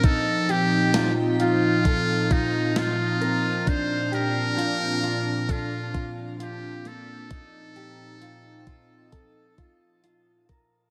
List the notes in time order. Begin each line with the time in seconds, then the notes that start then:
Already playing: A#2 F3 C4
0.04 D#4 A4, kick, closed hi-hat
0.49 G4, closed hi-hat
0.94 F4, snare, closed hi-hat
1.40 F4, closed hi-hat
1.85 A4, kick, closed hi-hat
2.31 D#4 F4, kick, closed hi-hat
2.76 F4, snare, closed hi-hat
3.21 A#4, closed hi-hat
3.66 A#2 D4 C5, kick, closed hi-hat
4.12 G4 A#4, closed hi-hat
4.57 F4, closed hi-hat
5.03 F4, closed hi-hat
5.49 F4 A4, kick, closed hi-hat
5.94 F4, kick, closed hi-hat
6.40 F4 G4, closed hi-hat
6.85 A#3 A4, closed hi-hat
7.30 C4 D#4, kick, closed hi-hat
7.76 G4, closed hi-hat
8.22 F4, closed hi-hat
8.67 F4, kick, closed hi-hat
9.12 A4, kick, closed hi-hat
9.58 F4, kick, closed hi-hat
10.04 F4, closed hi-hat
10.49 A#4, kick, closed hi-hat